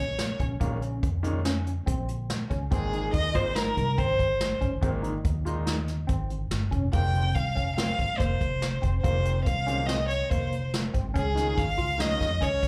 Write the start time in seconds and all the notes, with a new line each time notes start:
Already playing: A#1 C#5
0.19 snare, closed hi-hat
0.40 A#1 C#4, kick, closed hi-hat
0.60 A#1 A#2 D#3 G#3 A#3 C#4, kick, closed hi-hat
0.82 C#4, closed hi-hat
1.03 F2, kick, closed hi-hat
1.23 A#2 D#3 G#3 C#4 D#4, closed hi-hat
1.45 C#4, snare, closed hi-hat
1.67 closed hi-hat
1.86 A#1 C4, kick, closed hi-hat
2.09 closed hi-hat
2.30 snare, closed hi-hat
2.50 C#2 C#4, kick, closed hi-hat
2.71 G#1 A#2 D#3 G#3 C4 G#4, kick, closed hi-hat
2.93 D#4, closed hi-hat
3.13 D#2 D#5, kick, closed hi-hat
3.34 G#1 A#2 D#3 G#3 C4 F4 C5, kick, closed hi-hat
3.55 D#4 A#4, snare, closed hi-hat
3.77 C2, kick, closed hi-hat
3.98 G#1 C4 C5, kick, closed hi-hat
4.19 G#1, kick, closed hi-hat
4.41 snare, closed hi-hat
4.61 G#1 C#4, kick, closed hi-hat
4.81 G#1 A#2 D#3 G#3 A#3 C4, kick, closed hi-hat
5.03 D#4, closed hi-hat
5.25 D#2, kick, closed hi-hat
5.45 A#2 D#3 G#3 D#4 F4, closed hi-hat
5.66 D#4, snare, closed hi-hat
5.88 snare, closed hi-hat
6.07 G#1 C4, kick, closed hi-hat
6.30 closed hi-hat
6.51 G1, snare, closed hi-hat
6.71 F1 C#4, kick, closed hi-hat
6.92 F1 A#2 D#3 G#3 A#3 C4 G5, kick, closed hi-hat
7.13 C4, closed hi-hat
7.35 C2 F5, kick, closed hi-hat
7.55 F1 C#4, kick, closed hi-hat
7.76 C4 F5, snare, closed hi-hat
7.99 G#1, kick, closed hi-hat
8.18 F1 A#3 C5, kick, snare, closed hi-hat
8.41 F1, kick, closed hi-hat
8.62 snare, closed hi-hat
8.82 F1 C4, kick, closed hi-hat
9.01 F1 A#2 D#3 G#3 A#3 C4 C5, kick, closed hi-hat
9.25 C4, closed hi-hat
9.44 C2 F5, kick, closed hi-hat
9.66 A#2 D#3 G#3 C4 C#4, closed hi-hat
9.86 C4 D#5, snare, closed hi-hat
10.08 C#5, closed hi-hat
10.23 C#5
10.29 F1 A#3 C5, kick, closed hi-hat
10.52 closed hi-hat
10.74 snare, closed hi-hat
10.94 G#1 C4, kick, closed hi-hat
11.14 C#2 C#4 G#4, kick, closed hi-hat
11.35 D#3 G#3 C#4 D#4 F4, snare, closed hi-hat
11.58 G#1 F5, kick, snare, closed hi-hat
11.78 C#2 F4, kick, closed hi-hat
11.98 D#3 G#3 C#4 D#4 F4 D#5, snare, closed hi-hat
12.21 F2, kick, snare, closed hi-hat
12.41 C#2 C#4 C#5, kick, closed hi-hat
12.63 C#2, kick, closed hi-hat